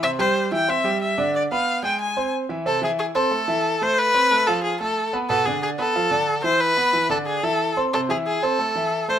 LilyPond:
<<
  \new Staff \with { instrumentName = "Erhu" } { \time 4/4 \key e \phrygian \tempo 4 = 182 e''8 c''4 g''8 e''4 e''4 | d''8 f''4 g''8 gis''4 r4 | \key a \minor a'8 gis'8 gis'8 a'2 c''8 | b'4. a'8 gis'8 a'4 r8 |
a'8 gis'8 gis'8 a'2 c''8 | b'4. a'8 gis'8 a'4 r8 | a'8 gis'8 gis'8 a'2 c''8 | }
  \new Staff \with { instrumentName = "Grand piano" } { \time 4/4 \key e \phrygian <c c' c''>8 <g g' g''>4 <e e' e''>8 <c' c'' c'''>8 <g g' g''>4 <d d' d''>8~ | <d d' d''>8 <b b' b''>4 <gis gis' gis''>4 <bis bis' bis''>4 <e e' e''>8 | \key a \minor <c c' c''>8 <e e' e''>4 <c' c'' c'''>8 <a a' a''>8 <e e' e''>4 <a a' a''>8~ | <a a' a''>8 <c' c'' c'''>8 <a a' a''>8 <f f' f''>4 <a a' a''>4 <b b' b''>8 |
<b, b b'>8 <d d' d''>4 <b b' b''>8 <f f' f''>8 <d d' d''>4 <e e' e''>8~ | <e e' e''>8 <b b' b''>8 <e e' e''>8 <d d' d''>4 <e e' e''>4 <c' c'' c'''>8 | <c c' c''>8 <e e' e''>4 <c' c'' c'''>8 <a a' a''>8 <e e' e''>4 <a a' a''>8 | }
>>